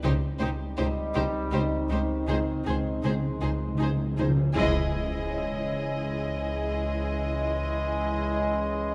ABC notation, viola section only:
X:1
M:3/4
L:1/8
Q:1/4=81
K:none
V:1 name="Viola section"
_E E E E E E | ^D D D D D D | E6- | E6 |]